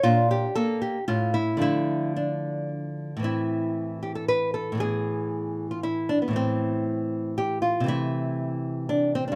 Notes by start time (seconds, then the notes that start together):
0.03 A#2 D4 F4
0.31 G4
0.55 A#3 A4
0.82 G4
1.08 A2 C#4 F4
1.34 E4
1.57 D3 F3 A3
1.62 E4
2.16 D4
3.17 A2 E3
3.23 C4 E4
4.03 G4
4.15 A4
4.28 B4
4.54 A4
4.72 A2 E3
4.77 B3 G#4
5.71 F4
5.83 E4
6.09 D4
6.22 B3
6.28 A2 E3
6.33 A3 C4
7.38 G4
7.62 F4
7.80 C3 E3
7.86 A3 E4
8.89 D4
9.15 C4
9.28 D4
9.32 G2